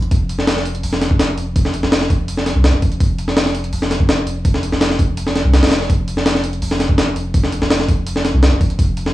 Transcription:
0.02 closed hi-hat
0.11 F1, kick, open hi-hat
0.29 open hi-hat
0.39 snare
0.47 snare, open hi-hat
0.57 snare
0.65 open hi-hat
0.75 closed hi-hat
0.83 F1, open hi-hat
0.93 snare
1.01 snare, open hi-hat
1.11 kick
1.19 snare, open hi-hat
1.38 open hi-hat
1.56 kick, open hi-hat
1.65 snare
1.74 open hi-hat
1.83 F1, snare
1.92 snare, open hi-hat
2.01 snare
2.10 kick, open hi-hat
2.28 open hi-hat
2.37 snare
2.46 snare, open hi-hat
2.55 C2
2.64 snare, open hi-hat
2.74 F1
2.82 kick, open hi-hat
2.92 closed hi-hat
3.00 F1, kick, open hi-hat
3.19 open hi-hat
3.28 snare
3.37 snare, open hi-hat
3.46 snare
3.55 open hi-hat
3.64 closed hi-hat
3.73 F1, open hi-hat
3.82 snare
3.91 snare, open hi-hat
4.00 kick
4.09 snare, open hi-hat
4.27 open hi-hat
4.45 kick, open hi-hat
4.54 snare
4.63 open hi-hat
4.72 F1, snare
4.81 snare, open hi-hat
4.91 snare
4.99 kick, open hi-hat
5.17 open hi-hat
5.27 snare
5.35 snare, open hi-hat
5.45 C2
5.53 snare, open hi-hat
5.63 F1, snare, open hi-hat
5.67 snare, open hi-hat
5.72 snare, open hi-hat
5.81 snare
5.90 F1, kick, open hi-hat
6.08 open hi-hat
6.17 snare
6.26 snare, open hi-hat
6.35 snare
6.44 open hi-hat
6.53 closed hi-hat
6.62 F1, open hi-hat
6.71 snare
6.80 snare, open hi-hat
6.89 kick
6.98 snare, open hi-hat
7.16 open hi-hat
7.34 kick, open hi-hat
7.43 snare
7.52 open hi-hat
7.61 F1, snare
7.70 snare, open hi-hat
7.80 snare
7.88 kick, open hi-hat
8.07 open hi-hat
8.16 snare
8.25 snare, open hi-hat
8.34 C2
8.43 snare, open hi-hat
8.52 F1
8.61 kick, open hi-hat
8.70 closed hi-hat
8.79 F1, kick, open hi-hat
8.97 open hi-hat
9.06 snare

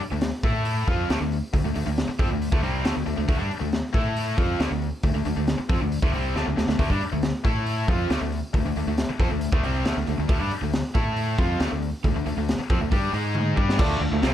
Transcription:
0.01 muted fingered electric bass stroke, muted overdriven electric guitar stroke, muted distorted electric guitar stroke
0.11 D2 D3 A3
0.21 snare, open hi-hat
0.43 A2 A3 E4 A4, kick, open hi-hat
0.65 open hi-hat
0.87 F2 F3 C4 F4, kick
1.09 D2 D3 A3, snare, open hi-hat
1.20 D2 D3 A3
1.32 open hi-hat
1.53 D2 D3 A3, kick, open hi-hat
1.64 D2 D3 A3
1.75 D2 D3 A3, open hi-hat
1.86 D2 D3 A3
1.97 snare, open hi-hat
2.08 muted overdriven electric guitar stroke, muted distorted electric guitar stroke, muted fingered electric bass stroke
2.19 F2 F3 C4, kick, open hi-hat
2.31 D2 D3 A3
2.42 open hi-hat
2.52 D2 D3 A3, kick
2.63 C2 C3 G3 C4, open hi-hat
2.85 D2 D3 A3, snare, open hi-hat
2.96 D2 D3 A3
3.06 D2 D3 A3, open hi-hat
3.16 D2 D3 A3
3.28 D2 D3 A3, kick, open hi-hat
3.38 G2 G3 D4
3.49 muted distorted electric guitar stroke, muted fingered electric bass stroke, muted overdriven electric guitar stroke, open hi-hat
3.60 D2 D3 A3
3.72 snare, open hi-hat
3.93 A2 A3 E4 A4, kick, open hi-hat
4.16 open hi-hat
4.36 F2 F3 C4 F4, kick, open hi-hat
4.59 D2 D3 A3, snare, open hi-hat
4.71 D2 D3 A3
4.82 open hi-hat
5.03 D2 D3 A3, kick, open hi-hat
5.14 D2 D3 A3
5.25 D2 D3 A3, open hi-hat
5.36 D2 D3 A3
5.47 snare, open hi-hat
5.58 muted distorted electric guitar stroke, muted overdriven electric guitar stroke, muted fingered electric bass stroke
5.69 F2 F3 C4, kick, open hi-hat
5.81 D2 D3 A3
5.92 open hi-hat
6.02 D2 D3 A3, kick
6.12 C2 C3 G3 C4, open hi-hat
6.35 D2 D3 A3, snare
6.46 D2 D3 A3
6.56 D2 D3 A3, snare
6.68 D2 D3 A3, snare
6.79 D2 D3 A3, kick, open hi-hat
6.90 G2 G3 D4, kick
7.01 muted fingered electric bass stroke, muted distorted electric guitar stroke, muted overdriven electric guitar stroke, open hi-hat
7.12 D2 D3 A3
7.22 snare, open hi-hat
7.44 A2 A3 E4 A4, kick, open hi-hat
7.66 open hi-hat
7.88 F2 F3 C4 F4, kick, open hi-hat
8.10 D2 D3 A3, snare, open hi-hat
8.21 D2 D3 A3
8.32 open hi-hat
8.54 D2 D3 A3, kick, open hi-hat
8.65 D2 D3 A3
8.75 D2 D3 A3, open hi-hat
8.87 D2 D3 A3
8.97 snare, open hi-hat
9.09 muted fingered electric bass stroke, muted distorted electric guitar stroke, muted overdriven electric guitar stroke
9.19 F2 F3 C4, kick, open hi-hat
9.31 D2 D3 A3
9.41 open hi-hat
9.52 D2 D3 A3, kick
9.63 C2 C3 G3 C4, open hi-hat
9.85 D2 D3 A3, snare, open hi-hat
9.97 D2 D3 A3
10.07 D2 D3 A3, open hi-hat
10.19 D2 D3 A3
10.29 D2 D3 A3, kick, open hi-hat
10.40 G2 G3 D4
10.51 muted overdriven electric guitar stroke, muted fingered electric bass stroke, muted distorted electric guitar stroke, open hi-hat
10.62 D2 D3 A3
10.73 snare, open hi-hat
10.95 A2 A3 E4 A4, kick, open hi-hat
11.16 open hi-hat
11.38 F2 F3 C4 F4, kick, open hi-hat
11.60 D2 D3 A3, snare, open hi-hat
11.71 D2 D3 A3
11.82 open hi-hat
12.04 D2 D3 A3, kick, open hi-hat
12.15 D2 D3 A3
12.26 D2 D3 A3, open hi-hat
12.37 D2 D3 A3
12.48 snare, open hi-hat
12.58 muted fingered electric bass stroke, muted overdriven electric guitar stroke, muted distorted electric guitar stroke
12.70 F2 F3 C4, kick, open hi-hat
12.81 D2 D3 A3
12.91 G2 G3 D4 G4, kick, open hi-hat
13.13 G#2 G#3 D#4 G#4, open hi-hat
13.35 high tom
13.57 G2 G3 D4 G4, kick
13.69 snare
13.79 D2 D3 A3 D4 F4 A4 D5, kick, crash
14.00 D2 D3 A3
14.11 D2 D3 A3 F4 A4 E5
14.22 C2 C3 G3 C4, snare, open hi-hat

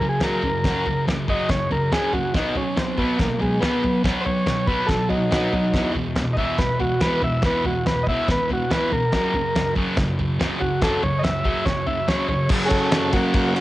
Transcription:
0.01 F#2 C#3
0.09 G#4
0.20 F#2 C#3 F#3 A#4, snare, floor tom
0.43 F#2 C#3, floor tom
0.64 F#2 C#3 F#3, kick, snare, floor tom
0.86 F#2 C#3, floor tom
1.08 F#2 C#3, snare, floor tom
1.28 F#2 C#3 F#3 D#5, kick, floor tom
1.49 F#2 C#3 C#5, kick, snare, floor tom
1.71 F#2 C#3 A#4, floor tom
1.92 F#2 C#3 F#3 G#4, snare, floor tom
2.13 F#2 C#3 F#4, floor tom
2.34 B2 F#3 B3 D#4, kick, snare, floor tom
2.55 B2 F#3 C#4, floor tom
2.77 B2 F#3 C4, snare, floor tom
2.98 B2 F#3 B3, kick, floor tom
3.19 B2 F#3 A#3, kick, snare, floor tom
3.39 B2 F#3 G#3, floor tom
3.60 B2 F#3 B3, snare, floor tom
3.83 B2 F#3, floor tom
4.04 B2 F#3 B3, kick, snare, floor tom
4.21 C5
4.25 B2 F#3 C#5, floor tom
4.46 B2 F#3, snare, floor tom
4.67 B2 F#3 B3 B4, kick, floor tom
4.86 B2 F#3 A4, kick, snare, floor tom
5.09 B2 F#3 D#4, floor tom
5.31 B2 F#3 B3, snare, floor tom
5.53 B2 F#3, floor tom
5.74 E2 B2 E3, kick, snare, floor tom
5.95 E2 B2, floor tom
6.16 E2 B2, snare, floor tom
6.33 D#5, kick, floor tom
6.37 E2 B2 E3 E5
6.58 E2 B2 B4, kick, snare, floor tom
6.80 E2 B2 F#4, floor tom
7.01 E2 B2 E3 B4, snare, floor tom
7.22 E2 B2 E5, floor tom
7.42 E2 B2 E3 B4, kick, snare, floor tom
7.64 E2 B2 F#4, floor tom
7.86 E2 B2 B4, snare, floor tom
8.03 D#5, kick, floor tom
8.08 E2 B2 E3 E5
8.28 E2 B2 B4, kick, snare, floor tom
8.49 E2 B2 F#4, floor tom
8.71 E2 B2 E3 B4, snare, floor tom
8.92 E2 B2 A#4, floor tom
9.12 F#2 C#3 F#3, kick, snare, floor tom
9.34 F#2 C#3, floor tom
9.56 F#2 C#3, snare, floor tom
9.75 F#2 C#3 F#3, kick, floor tom
9.97 F#2 C#3, kick, snare, floor tom
10.19 F#2 C#3, floor tom
10.39 F#2 C#3 F#3, snare, floor tom
10.60 F#2 C#3 F#4, floor tom
10.81 F#2 C#3 F#3 A4, kick, snare, floor tom
11.03 F#2 C#3 C#5, floor tom
11.19 D#5
11.23 F#2 C#3 E5, snare, floor tom
11.45 F#2 C#3 F#3, kick, floor tom
11.66 F#2 C#3 C#5, kick, snare, floor tom
11.87 F#2 C#3 E5, floor tom
12.08 F#2 C#3 F#3 C#5, snare, floor tom
12.28 F#2 C#3 C#5, floor tom
12.49 F#2 C#3, kick, crash
12.53 F#3
12.65 C#4 G#4
12.70 A4, kick, ride
12.91 C#4 A4, snare, ride
13.13 F#2 C#3 F#3 A#3 F#4, kick, ride
13.34 A#3 F#4, kick, ride
13.55 F#4, ride

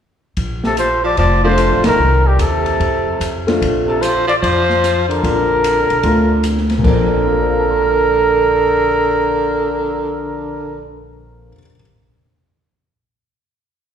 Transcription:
0.37 A#1, kick, ride
0.64 C3 A4, snare
0.77 F3 C5, hi-hat pedal, ride
1.04 F3 D5
1.17 F1 F3 D5, kick, ride
1.44 F3 A3 C4 D4 F4 C5
1.58 hi-hat pedal, ride
1.72 A1
1.84 A#1 D#3, snare, ride
1.88 A#4
1.99 C2
2.26 A#2 G4
2.39 D#2 C3 A4, hi-hat pedal, ride
2.66 ride
2.80 F2, kick, ride
3.20 F2, hi-hat pedal, ride
3.47 A3 C4 D4 F4, snare, ride
3.62 A#1, kick, ride
3.87 C3 A4
4.01 F3 C5, hi-hat pedal, ride
4.27 F3 D5, ride
4.42 F2 F3 C5, kick, ride
4.70 snare
4.84 hi-hat pedal, ride
5.08 D3 A#4, ride
5.23 A#1 A#3 C4 D4 F4, kick, ride
5.64 hi-hat pedal, ride
5.90 B1, ride
6.03 D2 A3 C4 D4 F4, kick, ride
6.43 hi-hat pedal, ride
6.58 snare
6.69 snare, ride
6.78 A#2 F3
6.84 A#1 D3 A#3 C4 A#4, kick, crash
6.90 D4
7.25 F4
7.32 A4
7.40 C5
7.49 F5
7.59 A5
7.70 C6
7.82 F6

